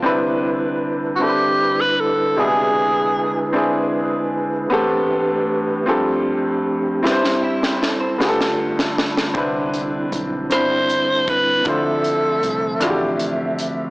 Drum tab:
HH |------------|------------|------------|------------|
SD |------------|------------|------------|oo-oo-oo-ooo|
BD |------------|------------|------------|------------|

HH |x-x-x-x-x-x-|x-x-x-x-x-x-|
SD |------r-----|------r-----|
BD |o---------o-|o-----------|